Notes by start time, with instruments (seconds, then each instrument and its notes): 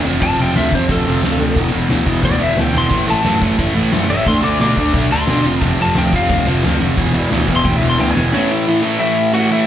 0.04 picked electric bass F1, overdriven electric guitar F2 C3 F3, crash
0.21 picked electric bass F1, overdriven electric guitar F2 C3 F3, lead electric guitar A5, kick, crash
0.38 picked electric bass F1, overdriven electric guitar F2 C3 F3, lead electric guitar G5, crash
0.56 picked electric bass D2, overdriven electric guitar F2 C3 F3, lead electric guitar E5, snare, crash
0.72 picked electric bass F1, overdriven electric guitar F2 C3 F3, lead electric guitar C5, kick, crash
0.88 picked electric bass D2, overdriven electric guitar F2 C3 F3, lead electric guitar A4, kick, crash
1.06 picked electric bass F1, overdriven electric guitar F2 C3 F3, crash
1.22 picked electric bass D2, overdriven electric guitar F2 C3 F3, snare, crash
1.38 picked electric bass D2, overdriven electric guitar F2 C3 F3, crash
1.56 picked electric bass E1, overdriven electric guitar E2 B2 E3, kick, crash
1.72 picked electric bass E1, overdriven electric guitar E2 B2 E3, crash
1.89 picked electric bass D2, overdriven electric guitar E2 B2 E3, snare, crash
2.06 picked electric bass E1, overdriven electric guitar E2 B2 E3, kick, crash
2.22 picked electric bass D2, overdriven electric guitar E2 B2 E3, lead electric guitar D5, kick, crash
2.38 picked electric bass E1, overdriven electric guitar E2 B2 E3, crash
2.43 lead electric guitar E5
2.57 picked electric bass D2, overdriven electric guitar E2 B2 E3, lead electric guitar G5, snare, crash
2.73 picked electric bass E1, overdriven electric guitar E2 B2 E3, crash
2.78 lead electric guitar C6
2.90 picked electric bass A1, overdriven electric guitar A2 E3 A3, kick, crash
3.08 picked electric bass A1, overdriven electric guitar A2 E3 A3, lead electric guitar A5, crash
3.23 picked electric bass F#2, overdriven electric guitar A2 E3 A3, snare, crash
3.41 picked electric bass A1, overdriven electric guitar A2 E3 A3, kick, crash
3.58 picked electric bass F#1, overdriven electric guitar A2 E3 A3, kick, crash
3.75 picked electric bass A1, overdriven electric guitar A2 E3 A3, crash
3.92 picked electric bass F#2, overdriven electric guitar A2 E3 A3, snare, crash
4.09 picked electric bass A1, overdriven electric guitar A2 E3 A3, lead electric guitar E5, crash
4.26 picked electric bass D2, overdriven electric guitar D3 A3 D4, lead electric guitar C6, kick, crash
4.43 picked electric bass D2, overdriven electric guitar D3 A3 D4, lead electric guitar D6, crash
4.59 picked electric bass B2, overdriven electric guitar D3 A3 D4, lead electric guitar D6, snare, crash
4.77 picked electric bass D2, overdriven electric guitar D3 A3 D4, kick, crash
4.93 picked electric bass B1, overdriven electric guitar D3 A3 D4, kick, crash
5.10 picked electric bass D2, overdriven electric guitar D3 A3 D4, lead electric guitar C6, crash
5.27 picked electric bass B2, overdriven electric guitar D3 A3 D4, snare, crash
5.44 picked electric bass F1, overdriven electric guitar F2 C3 F3, crash
5.61 picked electric bass F1, overdriven electric guitar F2 C3 F3, lead electric guitar A5, kick, crash
5.78 picked electric bass F1, overdriven electric guitar F2 C3 F3, crash
5.82 lead electric guitar A5
5.95 picked electric bass D2, overdriven electric guitar F2 C3 F3, lead electric guitar G5, snare, crash
6.12 picked electric bass F1, overdriven electric guitar F2 C3 F3, lead electric guitar F5, kick, crash
6.29 picked electric bass D2, overdriven electric guitar F2 C3 F3, kick, crash
6.46 picked electric bass F1, overdriven electric guitar F2 C3 F3, crash
6.63 picked electric bass D2, overdriven electric guitar F2 C3 F3, snare, crash
6.80 picked electric bass F1, overdriven electric guitar F2 C3 F3, crash
6.97 picked electric bass E1, overdriven electric guitar E2 B2 E3, kick, crash
7.14 picked electric bass E1, overdriven electric guitar E2 B2 E3, crash
7.30 picked electric bass D2, overdriven electric guitar E2 B2 E3, snare, crash
7.47 picked electric bass E1, overdriven electric guitar E2 B2 E3, kick, crash
7.56 lead electric guitar C6
7.64 picked electric bass D2, overdriven electric guitar E2 B2 E3, lead electric guitar G5, kick, crash
7.76 lead electric guitar E5
7.82 picked electric bass E1, overdriven electric guitar E2 B2 E3, crash
7.90 lead electric guitar C6
7.98 picked electric bass D2, overdriven electric guitar E2 B2 E3, lead electric guitar G5, snare, crash
8.11 lead electric guitar G#5
8.15 picked electric bass E1, overdriven electric guitar E2 B2 E3, crash
8.32 overdriven electric guitar A2 E3 A3, lead electric guitar C#4 C#5
8.49 lead electric guitar E4 E5
8.67 overdriven electric guitar A2 E3 A3
8.82 overdriven electric guitar A2 E3 A3
8.99 overdriven electric guitar A2 E3 A3, lead electric guitar E4 E5
9.33 overdriven electric guitar A2 E3 A3, lead electric guitar F#4 F#5
9.50 overdriven electric guitar A2 E3 A3, lead electric guitar E4 E5